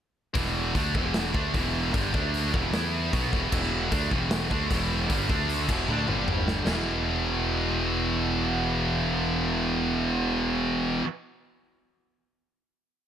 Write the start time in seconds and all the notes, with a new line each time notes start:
0.34 E1 E2 B2 E3, kick, open hi-hat
0.45 snare
0.74 D2 D3 A3 D4, kick, open hi-hat
0.93 E1 E2 B2 E3, kick
1.14 snare, open hi-hat
1.33 D2 D3 A3 D4, kick
1.53 E1 E2 B2 E3, kick, open hi-hat
1.94 G1 G2 D3 G3, kick, open hi-hat
2.13 D2 D3 A3 D4, kick
2.34 open hi-hat
2.53 E1 E2 B2 E3, kick
2.72 E2 E3 B3 E4, snare, open hi-hat
3.11 B1 B2 F#3 B3, kick, open hi-hat
3.32 E1 E2 B2 E3, kick
3.51 E1 E2 B2 E3, kick, crash
3.62 snare
3.91 D2 D3 A3 D4, kick, open hi-hat
4.09 E1 E2 B2 E3, kick
4.31 snare, open hi-hat
4.49 D2 D3 A3 D4, kick
4.69 E1 E2 B2 E3, kick, open hi-hat
5.09 G1 G2 D3 G3, kick, open hi-hat
5.28 D2 D3 A3 D4, kick
5.49 open hi-hat
5.67 E1 E2 B2 E3, kick, crash
5.87 D2 D3 A3 D4, high tom
6.07 G1 G2 D3 G3, mid tom
6.28 mid tom
6.48 snare
6.65 E1 E2 B2 E3, snare, splash